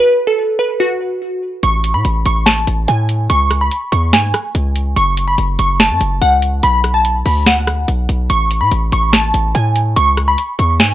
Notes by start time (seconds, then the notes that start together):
Already playing: B4
0.27 A4
0.59 B4
0.80 F#4
1.63 A1 C#6, closed hi-hat
1.84 closed hi-hat
1.94 A2 B5
2.05 A1, closed hi-hat
2.26 A1 C#6, closed hi-hat
2.46 A5, snare, closed hi-hat
2.67 A1, closed hi-hat
2.88 A2 G#5, closed hi-hat
3.09 closed hi-hat
3.30 C#2 C#6, closed hi-hat
3.51 cross-stick, closed hi-hat
3.61 B5
3.71 closed hi-hat
3.92 E2 C#6, closed hi-hat
4.13 G#2 G#5, snare, closed hi-hat
4.34 cross-stick, closed hi-hat
4.55 C#2, closed hi-hat
4.76 closed hi-hat
4.96 F#1 C#6, closed hi-hat
5.17 closed hi-hat
5.28 B5
5.38 F#1, closed hi-hat
5.59 F#1 C#6, closed hi-hat
5.80 A5, snare, closed hi-hat
5.90 F#2
6.01 F#1, closed hi-hat
6.22 C#2 F#5, closed hi-hat
6.42 closed hi-hat
6.63 B1 B5, closed hi-hat
6.84 cross-stick, closed hi-hat
6.94 A5
7.05 closed hi-hat
7.26 D2 B5, open hi-hat
7.46 F#5, snare, closed hi-hat
7.67 cross-stick, closed hi-hat
7.88 B1, closed hi-hat
8.09 B1, closed hi-hat
8.30 A1 C#6, closed hi-hat
8.51 closed hi-hat
8.61 A2 B5
8.72 A1, closed hi-hat
8.92 A1 C#6, closed hi-hat
9.13 A5, snare, closed hi-hat
9.34 A1, closed hi-hat
9.55 A2 G#5, closed hi-hat
9.76 closed hi-hat
9.96 C#2 C#6, closed hi-hat
10.17 cross-stick, closed hi-hat
10.28 B5
10.38 closed hi-hat
10.59 E2 C#6, closed hi-hat
10.80 G#2 G#5, snare, closed hi-hat